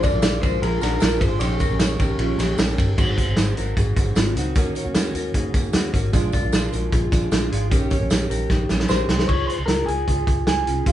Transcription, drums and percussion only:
0.03 kick, ride, tambourine
0.22 snare, ride, tambourine
0.43 kick, ride, tambourine
0.63 ride
0.81 snare, ride, tambourine
1.00 snare, ride, tambourine
1.21 kick, ride, tambourine
1.40 ride, tambourine
1.60 kick, ride, tambourine
1.79 snare, ride, tambourine
2.00 kick, ride, tambourine
2.19 ride
2.39 snare, ride, tambourine
2.58 snare, ride, tambourine
2.78 kick, ride, tambourine
2.98 kick, crash, tambourine
3.18 kick, closed hi-hat, tambourine
3.37 snare, closed hi-hat, tambourine
3.57 closed hi-hat, tambourine
3.77 kick, closed hi-hat, tambourine
3.96 kick, closed hi-hat, tambourine
4.16 snare, closed hi-hat, tambourine
4.36 closed hi-hat, tambourine
4.55 kick, closed hi-hat, tambourine
4.75 closed hi-hat, tambourine
4.95 snare, closed hi-hat, tambourine
5.15 closed hi-hat, tambourine
5.34 kick, closed hi-hat
5.54 kick, closed hi-hat, tambourine
5.73 snare, closed hi-hat, tambourine
5.94 kick, closed hi-hat, tambourine
6.13 kick, closed hi-hat, tambourine
6.32 kick, closed hi-hat, tambourine
6.52 snare, closed hi-hat, tambourine
6.73 closed hi-hat, tambourine
6.92 kick, closed hi-hat, tambourine
7.12 kick, snare, closed hi-hat, tambourine
7.31 snare, closed hi-hat, tambourine
7.52 closed hi-hat
7.71 kick, closed hi-hat, tambourine
7.90 kick, closed hi-hat, tambourine
8.10 snare, closed hi-hat, tambourine
8.31 closed hi-hat, tambourine
8.50 kick, snare, tambourine
8.69 snare, tambourine
8.80 snare
8.89 snare, tambourine
9.09 snare, tambourine
9.19 snare
9.29 kick, crash
9.49 closed hi-hat
9.68 snare, closed hi-hat
9.88 closed hi-hat
10.08 kick, closed hi-hat
10.27 kick, closed hi-hat
10.47 snare, closed hi-hat
10.67 closed hi-hat
10.86 kick, closed hi-hat

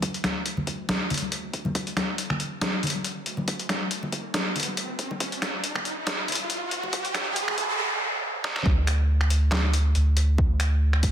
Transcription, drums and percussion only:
0.02 kick, closed hi-hat
0.14 closed hi-hat
0.24 finger snap, snare, closed hi-hat, high conga
0.46 closed hi-hat
0.57 high conga, low conga
0.67 kick, closed hi-hat
0.89 snare, closed hi-hat, high conga
1.10 closed hi-hat, low conga
1.14 closed hi-hat
1.18 closed hi-hat
1.22 high conga
1.32 closed hi-hat
1.53 kick, closed hi-hat
1.65 high conga, low conga
1.75 kick, closed hi-hat
1.87 closed hi-hat
1.97 finger snap, snare, closed hi-hat, high conga
2.18 closed hi-hat
2.30 finger snap, high conga, low conga
2.40 closed hi-hat
2.61 snare, closed hi-hat, high conga
2.83 closed hi-hat, low conga
2.87 closed hi-hat
2.90 closed hi-hat
2.95 high conga
3.04 closed hi-hat
3.26 closed hi-hat
3.37 high conga, low conga
3.48 kick, closed hi-hat
3.59 closed hi-hat
3.69 finger snap, snare, closed hi-hat, high conga
3.91 closed hi-hat
4.03 high conga, low conga
4.12 kick, closed hi-hat
4.34 snare, closed hi-hat, high conga
4.56 closed hi-hat, low conga
4.60 closed hi-hat
4.63 closed hi-hat
4.68 high conga
4.77 closed hi-hat
4.99 kick, closed hi-hat
5.11 high conga, low conga
5.20 kick, closed hi-hat
5.32 closed hi-hat
5.42 finger snap, snare, closed hi-hat, high conga
5.64 closed hi-hat
5.75 finger snap, high conga, low conga
5.85 closed hi-hat
6.07 snare, closed hi-hat, high conga
6.28 closed hi-hat, low conga
6.32 closed hi-hat
6.35 closed hi-hat
6.40 high conga
6.50 closed hi-hat
6.71 closed hi-hat
6.83 high conga, low conga
6.93 kick, closed hi-hat
7.05 closed hi-hat
7.14 finger snap, snare, closed hi-hat, high conga
7.36 closed hi-hat
7.48 finger snap, high conga, low conga
7.58 kick, closed hi-hat
8.44 snare
8.56 snare
8.66 kick
8.87 finger snap, closed hi-hat
9.21 finger snap
9.30 closed hi-hat
9.52 snare, clap
9.74 closed hi-hat
9.95 closed hi-hat
10.17 closed hi-hat
10.38 kick
10.60 finger snap, closed hi-hat
10.93 finger snap
11.03 kick, closed hi-hat

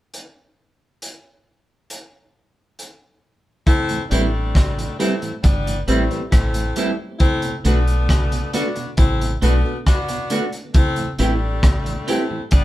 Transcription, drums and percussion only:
0.14 closed hi-hat
1.02 closed hi-hat
1.90 closed hi-hat
2.79 closed hi-hat
3.67 kick, closed hi-hat
3.89 closed hi-hat
4.11 closed hi-hat
4.55 kick, cross-stick, closed hi-hat
4.79 closed hi-hat
5.00 closed hi-hat
5.22 closed hi-hat
5.44 kick, closed hi-hat
5.67 closed hi-hat
5.88 closed hi-hat
6.11 closed hi-hat
6.32 kick, cross-stick, closed hi-hat
6.54 closed hi-hat
6.76 closed hi-hat
7.20 kick, closed hi-hat
7.42 closed hi-hat
7.65 closed hi-hat
7.87 closed hi-hat
8.09 kick, cross-stick, closed hi-hat
8.32 closed hi-hat
8.53 closed hi-hat
8.76 closed hi-hat
8.97 kick, closed hi-hat
9.21 closed hi-hat
9.42 closed hi-hat
9.86 kick, cross-stick, closed hi-hat
10.08 closed hi-hat
10.30 closed hi-hat
10.52 closed hi-hat
10.74 kick, closed hi-hat
10.96 closed hi-hat
11.19 closed hi-hat
11.63 kick, cross-stick, closed hi-hat
11.86 closed hi-hat
12.08 closed hi-hat
12.51 kick, closed hi-hat

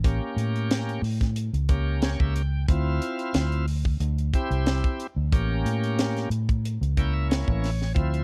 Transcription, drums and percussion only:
0.04 kick, closed hi-hat
0.38 closed hi-hat
0.56 closed hi-hat
0.71 snare, closed hi-hat
0.89 closed hi-hat
1.04 open hi-hat
1.21 kick, snare, closed hi-hat
1.36 closed hi-hat
1.54 closed hi-hat
1.69 kick, closed hi-hat
2.02 snare, closed hi-hat
2.20 kick
2.36 closed hi-hat
2.69 kick, closed hi-hat
3.02 closed hi-hat
3.19 closed hi-hat
3.34 snare, closed hi-hat
3.52 closed hi-hat
3.68 open hi-hat
3.85 kick
4.00 closed hi-hat
4.18 closed hi-hat
4.34 kick, closed hi-hat
4.51 closed hi-hat
4.66 snare, closed hi-hat
4.84 kick, closed hi-hat
5.00 closed hi-hat
5.32 kick, closed hi-hat
5.66 closed hi-hat
5.84 closed hi-hat
5.99 snare, closed hi-hat
6.17 snare, closed hi-hat
6.31 closed hi-hat
6.49 kick, closed hi-hat
6.65 closed hi-hat
6.83 closed hi-hat
6.97 kick, closed hi-hat
7.31 snare, closed hi-hat
7.48 kick
7.64 snare, open hi-hat
7.82 snare
7.96 kick, closed hi-hat
8.14 closed hi-hat

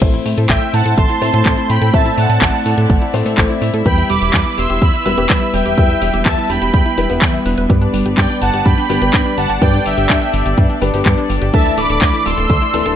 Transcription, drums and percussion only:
0.02 kick, closed hi-hat, crash
0.14 closed hi-hat
0.26 open hi-hat
0.38 closed hi-hat
0.50 kick, clap, closed hi-hat
0.62 closed hi-hat
0.74 open hi-hat
0.86 closed hi-hat
0.98 kick, closed hi-hat
1.10 closed hi-hat
1.22 open hi-hat
1.34 closed hi-hat
1.46 kick, clap, closed hi-hat
1.58 closed hi-hat
1.70 open hi-hat
1.82 closed hi-hat
1.94 kick, closed hi-hat
2.06 closed hi-hat
2.18 open hi-hat
2.30 closed hi-hat
2.42 kick, clap, closed hi-hat
2.54 closed hi-hat
2.66 open hi-hat
2.78 closed hi-hat
2.90 kick, closed hi-hat
3.02 closed hi-hat
3.14 open hi-hat
3.26 open hi-hat
3.38 kick, clap, closed hi-hat
3.50 closed hi-hat
3.62 open hi-hat
3.74 closed hi-hat
3.86 kick, closed hi-hat
3.98 closed hi-hat
4.10 open hi-hat
4.22 closed hi-hat
4.34 kick, clap, closed hi-hat
4.46 closed hi-hat
4.58 open hi-hat
4.70 closed hi-hat
4.82 kick, closed hi-hat
4.94 closed hi-hat
5.06 open hi-hat
5.18 closed hi-hat
5.30 kick, clap, closed hi-hat
5.42 closed hi-hat
5.54 open hi-hat
5.66 closed hi-hat
5.78 kick, closed hi-hat
5.90 closed hi-hat
6.02 open hi-hat
6.14 closed hi-hat
6.26 kick, clap, closed hi-hat
6.38 closed hi-hat
6.50 open hi-hat
6.62 closed hi-hat
6.74 kick, closed hi-hat
6.86 closed hi-hat
6.98 open hi-hat
7.10 open hi-hat
7.22 kick, clap, closed hi-hat
7.34 closed hi-hat
7.46 open hi-hat
7.58 closed hi-hat
7.70 kick, closed hi-hat
7.82 closed hi-hat
7.94 open hi-hat
8.06 closed hi-hat
8.18 kick, clap, closed hi-hat
8.30 closed hi-hat
8.42 open hi-hat
8.54 closed hi-hat
8.66 kick, closed hi-hat
8.78 closed hi-hat
8.90 open hi-hat
9.02 closed hi-hat
9.14 kick, clap, closed hi-hat
9.26 closed hi-hat
9.38 open hi-hat
9.50 closed hi-hat
9.62 kick, closed hi-hat
9.74 closed hi-hat
9.86 open hi-hat
9.98 closed hi-hat
10.10 kick, clap, closed hi-hat
10.22 closed hi-hat
10.34 open hi-hat
10.46 closed hi-hat
10.58 kick, closed hi-hat
10.70 closed hi-hat
10.82 open hi-hat
10.94 open hi-hat
11.06 kick, clap, closed hi-hat
11.18 closed hi-hat
11.30 open hi-hat
11.42 closed hi-hat
11.54 kick, closed hi-hat
11.66 closed hi-hat
11.78 open hi-hat
11.90 closed hi-hat
12.02 kick, clap, closed hi-hat
12.14 closed hi-hat
12.26 open hi-hat
12.38 closed hi-hat
12.50 kick, closed hi-hat
12.62 closed hi-hat
12.74 open hi-hat
12.86 closed hi-hat

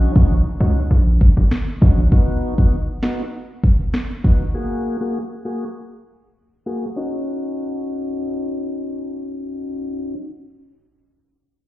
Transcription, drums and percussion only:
0.16 kick
1.21 kick
1.51 snare
1.82 kick
2.12 kick
2.58 kick
3.03 snare
3.64 kick
3.94 snare
4.24 kick

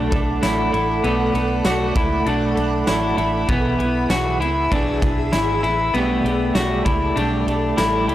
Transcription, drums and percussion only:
0.12 kick, ride
0.43 snare, ride, tambourine
0.74 ride
1.04 ride
1.35 ride
1.65 snare, ride, tambourine
1.96 kick, ride
2.26 ride
2.57 ride
2.87 snare, ride, tambourine
3.18 ride
3.49 kick, ride
3.80 ride
4.10 snare, ride, tambourine
4.42 ride
4.72 kick, ride
5.02 kick, ride
5.33 snare, ride, tambourine
5.64 ride
5.94 ride
6.26 ride
6.55 snare, ride, tambourine
6.86 kick, ride
7.17 ride
7.48 ride
7.78 snare, ride, tambourine
8.09 ride

